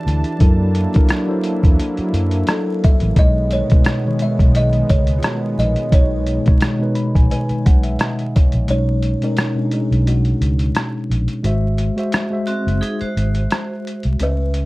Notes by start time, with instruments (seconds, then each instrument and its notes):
Already playing: analog synth pad E3 D4 E4 F#5 A5, tine electric piano E3 D4 F#4 G4 A4 B4 F#5
0.06 fingered electric bass D2, closed hi-hat
0.24 closed hi-hat
0.39 fingered electric bass F#2, tine electric piano F#3 D4 E4 A4 A#4, analog synth pad F#3 A#3 E4, kick, closed hi-hat
0.75 closed hi-hat
0.94 tine electric piano F#3 D4 E4 A4 A#4, kick, closed hi-hat
1.09 cross-stick, closed hi-hat
1.27 tine electric piano F#3 D4 E4 A4 C5
1.44 closed hi-hat
1.64 fingered electric bass E2, kick, closed hi-hat
1.79 closed hi-hat
1.97 muted fingered electric bass stroke, closed hi-hat
2.13 fingered electric bass F#2, closed hi-hat
2.31 closed hi-hat
2.47 kalimba A4, cross-stick, closed hi-hat
2.84 kalimba E5, kick, closed hi-hat
3.00 fingered electric bass A1, closed hi-hat
3.15 fingered electric bass B1, tine electric piano B2 G#3 D#4 C#5, analog synth pad D#3 G#3 B3, kalimba D#5, kick, closed hi-hat
3.51 kalimba C#5, closed hi-hat
3.69 tine electric piano B2 G#3 D#4 B4, kick, closed hi-hat
3.84 kalimba G#4, cross-stick, closed hi-hat
4.04 tine electric piano B2 D#3 G#3 C#5
4.19 kalimba E5, closed hi-hat
4.39 fingered electric bass B1, kick, closed hi-hat
4.55 kalimba D#5, closed hi-hat
4.73 closed hi-hat
4.89 fingered electric bass C#2, kalimba C#5, kick, closed hi-hat
5.07 closed hi-hat
5.19 kalimba F4
5.23 kalimba F#4, cross-stick, closed hi-hat
5.58 fingered electric bass A#1, kalimba D#5, closed hi-hat
5.76 closed hi-hat
5.90 fingered electric bass B1, tine electric piano B2 G#3 D#4 C#5, kick, closed hi-hat
5.94 kalimba C#5
6.26 closed hi-hat
6.45 tine electric piano B2 G#3 D#4 C#5, kick, closed hi-hat
6.60 cross-stick, closed hi-hat
6.79 tine electric piano B2 G#3 D#4 B4
6.95 tine electric piano B5, closed hi-hat
7.15 fingered electric bass A#1, tine electric piano G#5, kick, closed hi-hat
7.31 kalimba B4, tine electric piano G#5, closed hi-hat
7.49 muted fingered electric bass stroke, closed hi-hat
7.66 fingered electric bass B1, tine electric piano F#5, kick, closed hi-hat
7.83 tine electric piano E5, closed hi-hat
7.99 tine electric piano D#5, cross-stick, closed hi-hat
8.19 closed hi-hat
8.36 tine electric piano C#5, kick, closed hi-hat
8.52 fingered electric bass A#1, closed hi-hat
8.67 fingered electric bass B1, tine electric piano B2 G#3 C#4 D#4, kalimba C#5, closed hi-hat
9.02 closed hi-hat
9.21 tine electric piano B2 G#3 C#4 D#4, kalimba A#4, closed hi-hat
9.37 cross-stick, closed hi-hat
9.55 tine electric piano B2 G#3 C#4 D4
9.65 tine electric piano D#4
9.71 kalimba G#4, closed hi-hat
9.91 fingered electric bass B1, closed hi-hat
10.07 kalimba F#4, closed hi-hat
10.25 closed hi-hat
10.41 fingered electric bass C#2, closed hi-hat
10.59 closed hi-hat
10.75 cross-stick, closed hi-hat
11.10 fingered electric bass A#1, closed hi-hat
11.28 closed hi-hat
11.43 fingered electric bass G#1, tine electric piano G#3 F#4 C5 E5, closed hi-hat
11.78 closed hi-hat
11.96 tine electric piano G#3 F#4 C5 E5, closed hi-hat
12.12 cross-stick, closed hi-hat
12.30 tine electric piano G#3 F#4 C5 E5
12.47 vibraphone C4 F#4, closed hi-hat
12.67 fingered electric bass F#1, closed hi-hat
12.81 vibraphone D#4 G#4, closed hi-hat
13.01 vibraphone F#4 C5, muted fingered electric bass stroke, closed hi-hat
13.17 fingered electric bass G#1, closed hi-hat
13.35 closed hi-hat
13.50 cross-stick, closed hi-hat
13.87 closed hi-hat
14.03 fingered electric bass C2, closed hi-hat
14.20 fingered electric bass C#2, tine electric piano C#3 C#4 B4 E5, kalimba B4, closed hi-hat
14.54 closed hi-hat